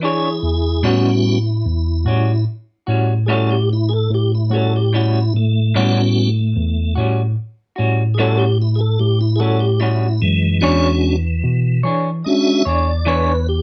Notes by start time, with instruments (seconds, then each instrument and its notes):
Already playing: tine electric piano E3
0.02 clean electric guitar E3 D4 G#4 C#5, tonewheel organ E4 G#4
0.42 tine electric piano E2
0.83 tine electric piano A2, clean electric guitar A2 G3 C#4 F#4, tonewheel organ G3 B3 C#4 F#4
1.65 tine electric piano E2
2.05 tine electric piano A2, clean electric guitar C#4 F#4
2.09 clean electric guitar G3
2.87 tine electric piano A2, clean electric guitar G3 C#4 F#4
3.26 tine electric piano A2, clean electric guitar A2 G3 C#4 F#4, tonewheel organ G#4
3.31 tonewheel organ A4
3.51 tonewheel organ G4
3.73 tonewheel organ E4
3.89 tonewheel organ G#4
3.93 tonewheel organ A4
4.10 tine electric piano A2
4.14 tonewheel organ G4
4.35 tonewheel organ E4
4.50 tine electric piano A2, clean electric guitar C#4 F#4, tonewheel organ G#4
4.54 clean electric guitar G3, tonewheel organ A4
4.76 tonewheel organ G4
4.93 clean electric guitar A2 G3 C#4 F#4, tonewheel organ E4
5.33 tine electric piano A2, tonewheel organ A3
5.75 clean electric guitar A2 G3 C#4 F#4, tine electric piano A2, tonewheel organ G3 B3 C#4 F#4
6.56 tine electric piano E2
6.95 tine electric piano A2, clean electric guitar G3 C#4 F#4
7.76 tine electric piano A2, clean electric guitar G3 C#4 F#4
8.14 clean electric guitar A2, tonewheel organ G#4
8.19 tine electric piano A2, clean electric guitar G3 C#4 F#4, tonewheel organ A4
8.39 tonewheel organ G4
8.62 tonewheel organ E4
8.75 tonewheel organ G#4
8.81 tonewheel organ A4
8.99 tine electric piano A2, tonewheel organ G4
9.21 tonewheel organ E4
9.36 clean electric guitar F#4, tonewheel organ G#4
9.40 tine electric piano A2, clean electric guitar G3 C#4, tonewheel organ A4
9.60 tonewheel organ G4
9.80 clean electric guitar A2 G3 C#4 F#4, tonewheel organ E4
10.22 tine electric piano F#2, tonewheel organ E3 G#3
10.61 tine electric piano E2, clean electric guitar E3 D4 G#4 C#5, tonewheel organ G#3 C#4 D4 F#4
11.43 tine electric piano B2
11.83 tine electric piano E3, clean electric guitar D4 G#4 C#5
12.24 tonewheel organ G#3 C#4 D4 F#4 D#5
12.29 tonewheel organ E5
12.65 tine electric piano E2, clean electric guitar D4 G#4 C#5, tonewheel organ D5
13.05 tine electric piano E2, clean electric guitar E3 D4 G#4 C#5, tonewheel organ B4
13.49 tonewheel organ G4